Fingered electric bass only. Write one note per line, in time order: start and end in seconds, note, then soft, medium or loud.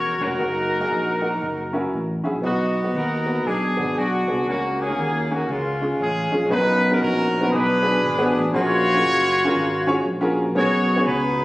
0.00 0.15 E1 medium
0.21 0.36 F1 medium
0.39 0.83 F#1 loud
0.90 1.34 A#1 medium
1.42 1.85 F#1 medium
1.93 2.21 A1 medium
2.25 2.41 A#1 medium
2.43 2.87 B1 loud
2.94 3.38 D#2 loud
3.46 3.73 B1 medium
3.78 3.94 G#1 medium
3.96 4.24 B1 medium
4.29 4.45 C2 medium
4.47 4.91 C#2 medium
4.98 5.42 D#2 medium
5.49 5.92 C#2 loud
6.00 6.28 A1 medium
6.32 6.48 A#1 medium
6.51 6.94 B1 loud
7.03 7.45 A#1 loud
7.53 7.96 B1 loud
8.04 8.31 G#1 medium
8.35 8.51 A1 medium
8.54 8.97 A#1 loud
9.04 9.47 F#1 medium
9.55 9.98 G#1 loud
10.05 10.48 A#1 loud
10.56 10.98 B1 loud
11.06 11.45 C#2 loud